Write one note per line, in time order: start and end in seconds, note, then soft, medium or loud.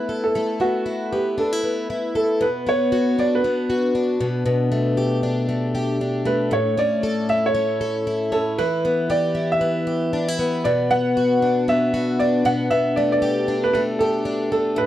0.00 0.34 A3 medium
0.00 0.59 B3 soft
0.00 0.85 E4 medium
0.00 0.26 B4 medium
0.09 0.35 A4 medium
0.24 0.61 A4 medium
0.35 2.41 A3 medium
0.35 2.14 A4 medium
0.60 1.12 B3 soft
0.60 1.14 F#4 medium
0.86 1.37 E4 medium
1.12 1.63 B3 soft
1.12 1.39 G4 medium
1.38 1.53 D4 soft
1.38 2.12 A4 medium
1.53 1.89 E4 soft
1.63 2.66 B3 soft
1.90 2.47 E4 soft
2.15 2.47 A4 medium
2.15 2.40 A4 medium
2.41 4.19 B2 medium
2.41 2.68 B4 medium
2.67 3.44 B3 soft
2.67 3.21 C#5 medium
2.92 3.68 F#4 medium
3.19 3.95 D4 medium
3.19 3.35 D5 medium
3.35 3.82 B4 medium
3.44 4.71 B3 medium
3.70 4.27 F#4 medium
3.95 5.23 D4 medium
4.20 4.44 B2 medium
4.46 6.52 B2 medium
4.72 5.48 A3 medium
4.97 5.74 G4 medium
5.23 6.00 D4 soft
5.49 6.25 A3 medium
5.75 6.59 G4 medium
6.01 6.59 D4 soft
6.25 6.77 A3 medium
6.25 6.53 B4 medium
6.51 8.58 A2 medium
6.51 6.79 C#5 medium
6.77 7.53 C#4 medium
6.77 7.32 D5 medium
7.03 7.80 A4 medium
7.29 8.07 E4 soft
7.29 7.46 E5 medium
7.46 7.94 C#5 medium
7.55 8.31 C#4 medium
7.81 8.65 A4 medium
8.07 9.34 E4 medium
8.32 8.65 C#4 medium
8.32 8.60 A4 medium
8.58 10.65 E3 medium
8.58 9.07 B4 medium
8.85 9.61 B3 medium
9.10 9.86 G4 medium
9.10 9.49 D5 medium
9.35 10.13 E4 medium
9.52 10.35 E5 medium
9.61 10.39 B3 medium
9.87 10.71 G4 medium
10.13 10.29 D4 medium
10.29 10.71 E4 soft
10.39 10.90 B3 medium
10.64 12.44 B2 medium
10.64 10.91 D5 medium
10.91 11.68 B3 medium
10.91 11.70 F#5 loud
11.17 11.93 F#4 medium
11.42 12.20 D4 medium
11.68 12.97 B3 medium
11.68 12.21 E5 medium
11.94 12.51 F#4 medium
12.19 13.48 D4 medium
12.19 12.43 D5 medium
12.45 12.70 B2 medium
12.45 12.69 F#5 medium
12.70 14.77 B2 medium
12.70 12.97 E5 medium
12.96 13.74 A3 medium
12.96 13.11 D5 medium
13.12 13.65 D5 medium
13.22 13.99 G4 medium
13.48 14.24 D4 medium
13.64 13.72 B4 medium
13.73 14.51 A3 medium
13.73 13.79 B4 medium
13.99 14.84 G4 medium
13.99 14.50 A4 medium
14.25 14.83 D4 medium
14.52 14.86 A3 medium
14.52 14.78 A4 medium
14.76 14.86 A2 medium
14.76 14.86 B4 medium